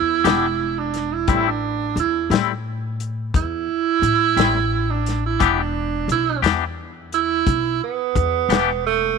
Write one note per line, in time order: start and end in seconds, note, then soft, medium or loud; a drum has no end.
0.00 0.26 E2 medium
0.00 0.80 E4 loud
0.24 1.24 E1 medium
0.24 0.46 E3 medium
0.24 0.46 B3 medium
0.24 0.46 D4 medium
0.24 0.45 G4 medium
0.24 snare loud
0.24 closed hi-hat medium
0.79 1.15 D4 medium
0.94 snare soft
0.94 closed hi-hat medium
1.13 1.49 E4 medium
1.28 1.92 A1 medium
1.28 1.48 A2 medium
1.28 1.48 G3 medium
1.28 1.48 C4 medium
1.28 1.49 E4 medium
1.28 kick loud
1.28 closed hi-hat medium
1.48 1.96 D4 medium
1.96 2.27 E2 medium
1.96 closed hi-hat medium
2.00 2.31 E4 medium
2.30 3.29 A2 medium
2.30 2.52 A2 medium
2.30 2.52 G3 medium
2.30 2.52 C4 medium
2.30 2.51 E4 medium
2.30 snare loud
2.30 closed hi-hat medium
3.00 closed hi-hat soft
3.34 3.65 E2 medium
3.34 4.92 E4 loud
3.34 kick loud
3.34 closed hi-hat medium
4.02 4.38 A2 medium
4.02 closed hi-hat medium
4.36 5.36 A1 medium
4.36 4.58 A2 medium
4.36 4.58 G3 medium
4.36 4.57 C4 medium
4.36 4.57 E4 medium
4.36 snare loud
4.36 closed hi-hat medium
4.91 5.23 D4 medium
5.06 snare soft
5.06 closed hi-hat medium
5.26 5.61 E4 medium
5.40 6.05 E1 medium
5.40 5.60 E3 medium
5.40 5.60 B3 medium
5.40 5.61 D4 medium
5.40 5.61 G4 medium
5.40 kick loud
5.40 closed hi-hat medium
5.60 6.08 D4 medium
6.08 6.40 B1 medium
6.08 6.43 E4 medium
6.08 closed hi-hat medium
6.42 7.42 E2 medium
6.42 6.64 E3 medium
6.42 6.64 B3 medium
6.42 6.64 D4 medium
6.42 6.63 G4 medium
6.42 snare loud
6.42 closed hi-hat medium
7.12 7.79 E4 medium
7.12 closed hi-hat medium
7.47 7.78 B1 medium
7.47 kick loud
7.47 closed hi-hat medium
7.84 8.82 B3 medium
8.15 8.50 E2 medium
8.15 kick medium
8.15 closed hi-hat medium
8.49 9.18 E1 medium
8.49 8.71 E3 medium
8.49 8.70 B3 medium
8.49 8.70 D4 medium
8.49 8.70 G4 medium
8.49 snare loud
8.49 closed hi-hat medium
8.86 9.18 A3 loud